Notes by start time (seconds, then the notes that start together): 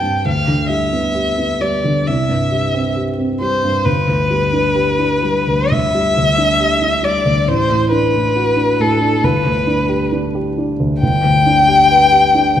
Already playing: C2 G2 G3 C4 G4 G5
0.03 G2
0.25 D2 F5
0.48 D3
0.70 G3 E5
0.93 B3
1.15 G4
1.38 B3
1.61 G3 D5
1.84 D3
2.07 C2 E5
2.29 G2
2.52 G3
2.74 C4
2.96 G4
3.18 C4
3.41 G3 C5
3.64 G2
3.85 G1 B4
4.08 D2
4.31 G3
4.53 D4
4.76 G4
4.99 D4
5.23 G3
5.47 D2
5.70 G1 E5
5.95 G3
6.17 D2
6.38 D4
6.60 G4
6.82 D4
7.03 G3 D5
7.25 D2
7.47 A1 C5
7.70 A2
7.91 D4 B4
8.15 A2
8.36 F#4
8.57 D4
8.79 A2 A4
9.01 D4
9.23 G1 B4
9.46 D2
9.67 D4
9.89 G4
10.12 D4
10.35 G4
10.58 D4
10.80 D2
11.02 G1 G5
11.24 D2
11.46 D4
11.68 G4
11.91 B4
12.12 G4
12.35 D4
12.57 D2